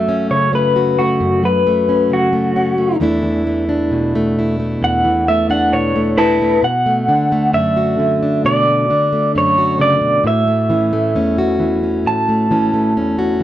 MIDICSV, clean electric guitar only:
0, 0, Header, 1, 2, 480
1, 0, Start_track
1, 0, Tempo, 903614
1, 1602, Time_signature, 4, 2, 24, 8
1, 7135, End_track
2, 0, Start_track
2, 0, Title_t, "Clean electric guitar"
2, 0, Program_c, 0, 27
2, 0, Note_on_c, 0, 76, 89
2, 151, Note_off_c, 0, 76, 0
2, 164, Note_on_c, 0, 73, 75
2, 280, Note_off_c, 0, 73, 0
2, 292, Note_on_c, 0, 71, 81
2, 521, Note_off_c, 0, 71, 0
2, 523, Note_on_c, 0, 66, 69
2, 756, Note_off_c, 0, 66, 0
2, 772, Note_on_c, 0, 71, 78
2, 1116, Note_off_c, 0, 71, 0
2, 1133, Note_on_c, 0, 66, 86
2, 1593, Note_off_c, 0, 66, 0
2, 2571, Note_on_c, 0, 78, 93
2, 2799, Note_off_c, 0, 78, 0
2, 2807, Note_on_c, 0, 76, 89
2, 2921, Note_off_c, 0, 76, 0
2, 2925, Note_on_c, 0, 78, 82
2, 3040, Note_off_c, 0, 78, 0
2, 3045, Note_on_c, 0, 73, 80
2, 3276, Note_off_c, 0, 73, 0
2, 3280, Note_on_c, 0, 71, 95
2, 3285, Note_on_c, 0, 81, 103
2, 3514, Note_off_c, 0, 71, 0
2, 3526, Note_off_c, 0, 81, 0
2, 3528, Note_on_c, 0, 78, 98
2, 4005, Note_off_c, 0, 78, 0
2, 4007, Note_on_c, 0, 76, 85
2, 4491, Note_off_c, 0, 76, 0
2, 4493, Note_on_c, 0, 74, 95
2, 4946, Note_off_c, 0, 74, 0
2, 4981, Note_on_c, 0, 73, 84
2, 5195, Note_off_c, 0, 73, 0
2, 5213, Note_on_c, 0, 74, 80
2, 5454, Note_off_c, 0, 74, 0
2, 5457, Note_on_c, 0, 76, 88
2, 6411, Note_off_c, 0, 76, 0
2, 6413, Note_on_c, 0, 81, 95
2, 7132, Note_off_c, 0, 81, 0
2, 7135, End_track
0, 0, End_of_file